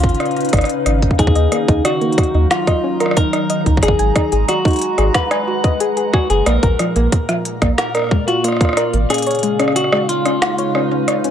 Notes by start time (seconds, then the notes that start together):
Already playing: C#3 C#4 D#4 F4 B4 F5
0.03 G#1, kick, closed hi-hat
0.09 closed hi-hat
0.14 closed hi-hat
0.20 cross-stick, closed hi-hat
0.26 closed hi-hat
0.31 closed hi-hat
0.36 closed hi-hat
0.41 closed hi-hat
0.45 closed hi-hat
0.49 closed hi-hat
0.53 G#1, kick, cross-stick, closed hi-hat
0.57 cross-stick, closed hi-hat
0.61 cross-stick, closed hi-hat
0.65 closed hi-hat
0.69 closed hi-hat
0.86 G#1, cross-stick, closed hi-hat
1.02 kick, closed hi-hat
1.11 kick
1.19 D#2 D#3 D#4 G#4, kick, closed hi-hat
1.27 kick
1.35 D#2 D#5, closed hi-hat
1.52 A#3, cross-stick, closed hi-hat
1.68 D#2 F#3 D#4, kick, closed hi-hat
1.85 F#4, cross-stick, closed hi-hat
2.01 A#3, closed hi-hat
2.12 closed hi-hat
2.18 kick, cross-stick, closed hi-hat
2.23 closed hi-hat
2.31 D#2 D#4 A#5
2.51 F4, snare, closed hi-hat
2.67 D#5, kick, cross-stick, closed hi-hat
2.84 C#4
3.00 A#4, cross-stick, closed hi-hat
3.06 cross-stick
3.11 cross-stick
3.17 D#4 A#4, kick, closed hi-hat
3.33 D#4, cross-stick, closed hi-hat
3.50 D#5, closed hi-hat
3.66 C#2 D#4, kick, closed hi-hat
3.77 kick
3.83 G#1 G#3 G#4, cross-stick, closed hi-hat
3.88 kick
3.99 G#1 G#5, closed hi-hat
4.16 D#4, kick, cross-stick, closed hi-hat
4.32 G#1 G#4, closed hi-hat
4.49 F#4, cross-stick, closed hi-hat
4.65 D#4, kick, closed hi-hat
4.68 closed hi-hat
4.71 closed hi-hat
4.73 closed hi-hat
4.76 closed hi-hat
4.79 closed hi-hat
4.81 closed hi-hat
4.98 G#1 G#4 B4 F#5, cross-stick, closed hi-hat
5.14 B4, kick, snare, closed hi-hat
5.31 G#5, cross-stick, closed hi-hat
5.48 F#4
5.64 D#5, kick, cross-stick, closed hi-hat
5.80 G#4, closed hi-hat
5.97 G#4, closed hi-hat
6.13 F#4 G#5, kick, cross-stick
6.30 F#1 G#4, closed hi-hat
6.46 A#1 A#2 A#3 A#4, cross-stick, closed hi-hat
6.63 A#1 A#4, kick, closed hi-hat
6.79 F3, cross-stick, closed hi-hat
6.93 A#1 A#3, closed hi-hat
7.12 kick, closed hi-hat
7.21 F5
7.29 F3, cross-stick, closed hi-hat
7.45 closed hi-hat
7.62 A#1 A#3 D5, kick, cross-stick, closed hi-hat
7.78 A#4, snare, closed hi-hat
7.95 A#4, cross-stick, closed hi-hat
7.97 cross-stick
7.99 cross-stick
8.02 cross-stick
8.04 cross-stick
8.07 cross-stick
8.09 G#3, kick, cross-stick
8.28 F4 F#4, closed hi-hat
8.44 A#3 F4, cross-stick, closed hi-hat
8.48 cross-stick
8.52 cross-stick
8.57 cross-stick
8.61 A#3, kick, cross-stick, closed hi-hat
8.65 cross-stick
8.69 cross-stick
8.73 cross-stick
8.77 A#4, cross-stick, closed hi-hat
8.94 G#1 A#3, closed hi-hat
9.10 C#3 C#4 G#4, cross-stick, closed hi-hat
9.14 closed hi-hat
9.18 closed hi-hat
9.22 closed hi-hat
9.27 C#5, closed hi-hat
9.31 closed hi-hat
9.35 closed hi-hat
9.39 closed hi-hat
9.43 G#3, closed hi-hat
9.52 G#3
9.59 C#4, cross-stick, closed hi-hat
9.68 D#4, cross-stick
9.76 F#4, cross-stick, closed hi-hat
9.84 cross-stick
9.92 G#3, cross-stick
10.09 F4, closed hi-hat
10.25 C#4 B4, cross-stick, closed hi-hat
10.42 snare, closed hi-hat
10.58 C#5, closed hi-hat
10.75 C#4, cross-stick
10.91 C#4
11.08 C#5, cross-stick, closed hi-hat
11.24 C#4, closed hi-hat